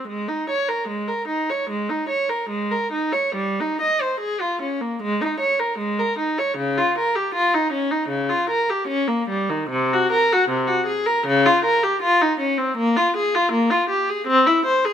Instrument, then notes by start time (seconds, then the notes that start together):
viola
0.08 G#3
0.28 D#4
0.50 C#5
0.69 A#4
0.88 G#3
1.08 A#4
1.28 D#4
1.50 C#5
1.70 G#3
1.89 D#4
2.09 C#5
2.30 A#4
2.50 G#3
2.71 A#4
2.92 D#4
3.13 C#5
3.35 G3
3.60 D#4
3.81 D#5
4.01 C5
4.20 G#4
4.41 F4
4.62 C#4
4.81 A#3
5.02 G#3
5.21 D#4
5.40 C#5
5.59 A#4
5.78 G#3
6.00 A#4
6.19 D#4
6.38 C#5
6.57 C#3
6.78 F4
6.98 A#4
7.16 G4
7.34 F4
7.54 D#4
7.72 C#4
7.91 D#4
8.09 C#3
8.29 F4
8.50 A#4
8.70 G4
8.88 C#4
9.08 A#3
9.29 G3
9.50 D#3
9.70 C3
9.93 F#4
10.12 A#4
10.33 F#4
10.49 C3
10.67 F#4
10.87 G#4
11.06 A#4
11.27 C#3
11.46 F4
11.65 A#4
11.83 G4
12.02 F4
12.21 D#4
12.40 C#4
12.58 C4
12.77 A#3
12.97 F4
13.17 G#4
13.35 F4
13.52 A#3
13.71 F4
13.90 G4
14.09 G#4
14.27 C4
14.47 E4
14.66 C5
14.85 G#4